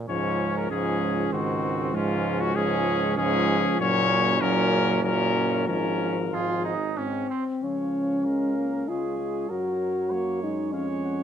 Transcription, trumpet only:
0.09 0.52 C#5 loud
0.57 0.70 A#4 loud
0.71 1.31 G#4 loud
1.32 1.96 F#4 loud
1.95 2.42 F4 loud
2.40 2.57 F#4 loud
2.55 3.17 G#4 loud
3.17 3.79 G#4 loud
3.80 4.43 C#5 loud
4.41 5.03 A#4 loud
5.04 5.66 A#4 loud
5.68 6.35 A#4 loud
6.34 6.99 G#4 medium
7.64 8.85 F5 soft
8.89 9.49 C#5 soft
9.51 10.71 C#5 soft
10.73 10.87 F5 soft
11.04 11.23 F#5 medium

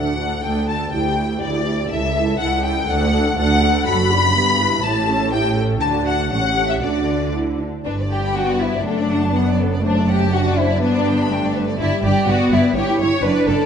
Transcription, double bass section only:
0.00 0.38 D2 soft
0.44 0.87 D2 soft
0.92 1.36 D2 soft
1.42 1.85 D2 soft
1.91 2.34 C#2 soft
2.40 2.83 C#2 soft
2.89 3.32 D2 medium
3.38 3.82 D2 medium
3.88 4.33 F#1 medium
4.36 4.84 G1 soft
4.84 5.80 A1 medium
5.81 6.28 D2 soft
6.31 6.82 A1 soft
6.82 7.65 D2 soft
7.85 8.81 G1 soft
8.85 10.82 F#1 soft
10.82 11.78 G1 medium
11.80 11.88 G1 medium
12.03 12.11 G1 medium
12.27 12.35 G1 medium
12.51 12.59 G1 medium
12.75 12.83 G1 medium
12.99 13.07 G1 medium
13.23 13.31 F#1 medium
13.47 13.55 F#1 medium

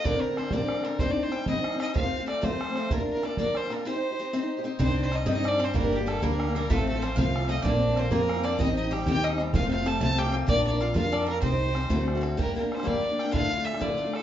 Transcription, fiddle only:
0.04 0.23 D5 loud
0.21 0.39 A#4 medium
0.37 0.54 C5 medium
0.53 0.86 D5 medium
0.85 1.01 A#4 medium
0.99 1.13 C5 medium
1.11 1.24 D5 medium
1.23 1.34 C5 medium
1.32 1.47 G5 medium
1.48 1.78 D#5 loud
1.81 1.95 D#5 medium
1.96 2.25 F5 medium
2.28 2.45 D5 medium
2.44 2.93 C5 medium
2.92 3.08 A#4 medium
3.10 3.27 A#4 medium
3.25 3.38 D5 medium
3.39 3.58 D5 medium
3.56 3.74 C5 medium
3.72 3.88 A#4 medium
3.86 4.50 C5 medium
4.83 4.98 C5 medium
5.01 5.17 C5 medium
5.15 5.29 D#5 medium
5.32 5.49 D#5 medium
5.48 5.65 D5 loud
5.64 5.77 C5 medium
5.78 5.97 A#4 loud
5.96 6.11 G4 medium
6.10 6.25 A4 medium
6.24 6.55 A#4 medium
6.56 6.73 A#4 medium
6.72 6.88 A4 loud
6.88 7.04 A4 medium
7.03 7.17 C5 medium
7.18 7.48 F5 medium
7.49 7.63 D#5 medium
7.65 8.00 D5 medium
7.99 8.12 C5 medium
8.13 8.46 A#4 loud
8.44 8.61 D5 medium
8.59 8.76 D#5 loud
8.77 8.93 D#5 medium
8.92 9.07 G5 medium
9.08 9.25 G5 loud
9.24 9.39 D#5 loud
9.55 9.70 F5 loud
9.71 9.89 F5 medium
9.87 10.01 A5 medium
10.01 10.20 A5 loud
10.18 10.33 G5 loud
10.49 10.65 D5 loud
10.66 10.84 D5 medium
10.82 10.95 F5 medium
10.96 11.14 F5 loud
11.13 11.28 D5 loud
11.28 11.41 A#4 medium
11.42 12.18 C5 medium
12.42 12.56 A#4 medium
12.58 12.76 A#4 medium
12.74 12.88 C5 medium
12.87 13.21 D5 loud
13.20 13.32 G5 loud
13.33 13.66 F5 loud
13.65 13.83 E5 medium
13.81 14.16 D5 medium
14.15 14.23 A4 medium

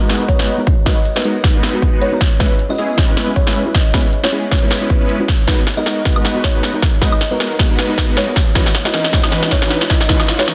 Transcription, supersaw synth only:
0.01 0.37 G#3 medium
0.01 0.37 B3 medium
0.01 0.37 D#4 medium
0.01 0.37 F#4 medium
0.01 0.37 B4 medium
0.39 0.56 G#3 medium
0.39 0.56 B3 medium
0.39 0.56 D#4 medium
0.39 0.56 F#4 medium
0.39 0.56 B4 medium
0.86 0.98 G#3 medium
0.86 0.98 B3 medium
0.86 0.98 D#4 medium
0.86 0.98 F#4 medium
0.86 0.98 B4 medium
1.25 1.36 G#3 medium
1.25 1.36 B3 medium
1.25 1.36 D#4 medium
1.25 1.36 F#4 medium
1.25 1.36 A#4 medium
1.44 1.52 G#3 medium
1.44 1.52 B3 medium
1.44 1.52 D#4 medium
1.44 1.52 F#4 medium
1.44 1.52 B4 medium
1.55 1.91 G#3 medium
1.55 1.90 B3 medium
1.55 1.91 D#4 medium
1.55 1.91 F#4 medium
1.55 1.91 B4 medium
1.93 2.10 G#3 medium
1.93 2.10 B3 medium
1.93 2.10 D#4 medium
1.93 2.10 F#4 medium
1.93 2.10 B4 medium
2.40 2.52 G#3 medium
2.40 2.52 B3 medium
2.40 2.52 C#4 medium
2.40 2.52 E4 medium
2.40 2.52 B4 medium
2.78 2.90 G#3 medium
2.78 2.90 B3 medium
2.78 2.90 C#4 medium
2.78 2.90 E4 medium
2.78 2.90 G#4 medium
2.98 3.06 G#3 medium
2.98 3.06 B3 medium
2.98 3.06 C#4 medium
2.98 3.06 E4 medium
2.98 3.06 B4 medium
3.08 3.44 G#3 medium
3.08 3.44 B3 medium
3.08 3.44 C#4 medium
3.08 3.44 E4 medium
3.08 3.44 B4 medium
3.47 3.64 G#3 medium
3.47 3.64 B3 medium
3.47 3.64 C#4 medium
3.47 3.64 E4 medium
3.47 3.64 B4 medium
3.94 4.06 G#3 medium
3.94 4.06 B3 medium
3.94 4.06 C#4 medium
3.94 4.06 E4 medium
3.94 4.06 B4 medium
4.32 4.44 G#3 medium
4.32 4.44 B3 medium
4.32 4.44 C#4 medium
4.32 4.44 E4 medium
4.32 4.44 G#4 medium
4.52 4.60 B3 medium
4.52 4.60 B4 medium
4.62 4.98 G#3 medium
4.62 4.98 B3 medium
4.62 4.98 C#4 medium
4.62 4.98 E4 medium
4.62 4.98 B4 medium
5.01 5.18 G#3 medium
5.01 5.18 B3 medium
5.01 5.18 C#4 medium
5.01 5.18 E4 medium
5.01 5.18 B4 medium
5.48 5.59 G#3 medium
5.48 5.59 B3 medium
5.48 5.59 D#4 medium
5.48 5.59 F#4 medium
5.48 5.59 B4 medium
5.86 5.98 G#3 medium
5.86 5.98 B3 medium
5.86 5.98 D#4 medium
5.86 5.98 F#4 medium
5.86 5.98 A#4 medium
6.05 6.14 B3 medium
6.05 6.13 F#4 medium
6.05 6.14 B4 medium
6.16 6.52 G#3 medium
6.16 6.52 B3 medium
6.16 6.52 D#4 medium
6.16 6.52 F#4 medium
6.16 6.52 B4 medium
6.55 6.72 G#3 medium
6.55 6.72 B3 medium
6.55 6.72 D#4 medium
6.55 6.72 F#4 medium
6.55 6.72 B4 medium
7.02 7.13 G#3 medium
7.02 7.13 B3 medium
7.02 7.13 D#4 medium
7.02 7.13 F#4 medium
7.02 7.13 B4 medium
7.40 7.52 G#3 medium
7.40 7.52 B3 medium
7.40 7.52 D#4 medium
7.40 7.52 F#4 medium
7.40 7.52 A#4 medium
7.59 7.67 G#3 medium
7.59 7.67 B3 medium
7.59 7.67 D#4 medium
7.70 8.06 G#3 medium
7.70 8.06 B3 medium
7.70 8.06 D#4 medium
7.70 8.06 F#4 medium
7.70 8.06 B4 medium
8.08 8.25 G#3 medium
8.08 8.25 B3 medium
8.08 8.25 D#4 medium
8.08 8.25 F#4 medium
8.08 8.25 B4 medium
8.55 8.67 E3 medium
8.55 8.67 C#4 medium
8.55 8.67 D#4 medium
8.55 8.67 F#4 medium
8.55 8.67 B4 medium
8.94 9.06 E3 medium
8.94 9.06 C#4 medium
8.94 9.06 D#4 medium
8.94 9.06 F#4 medium
8.94 9.06 A#4 medium
9.13 9.21 E3 medium
9.13 9.21 C#4 medium
9.13 9.21 D#4 medium
9.13 9.21 F#4 medium
9.13 9.21 B4 medium
9.24 9.60 E3 medium
9.24 9.60 C#4 medium
9.24 9.60 D#4 medium
9.24 9.60 F#4 medium
9.24 9.60 B4 medium
9.62 9.79 E3 medium
9.62 9.79 C#4 medium
9.62 9.79 D#4 medium
9.62 9.79 F#4 medium
9.62 9.79 B4 medium
10.09 10.21 E3 medium
10.09 10.21 C#4 medium
10.09 10.21 D#4 medium
10.09 10.21 F#4 medium
10.09 10.21 B4 medium
10.48 10.54 E3 medium
10.48 10.54 C#4 medium
10.48 10.54 D#4 medium
10.48 10.54 F#4 medium
10.48 10.54 A#4 loud

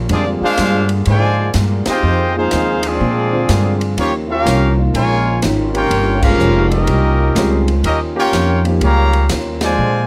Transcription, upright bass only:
0.09 0.39 F2 loud
0.41 muted upright bass stroke soft
0.58 1.05 G2 loud
1.07 1.54 G#2 medium
1.54 1.85 G2 loud
1.87 muted upright bass stroke soft
2.03 2.50 F2 medium
2.52 2.99 D#2 loud
3.00 3.47 A#2 loud
3.49 3.96 G2 medium
3.97 4.44 D#2 medium
4.46 4.93 C2 loud
4.94 5.41 A#1 loud
5.43 5.90 G#1 loud
5.90 6.38 G1 medium
6.39 6.86 F1 medium
6.87 7.34 C2 medium
7.35 7.83 C#2 loud
7.83 8.31 D#2 medium
8.33 8.80 F2 loud
8.81 9.28 C#2 loud
9.30 9.77 D#2 medium
9.78 10.07 A#2 medium

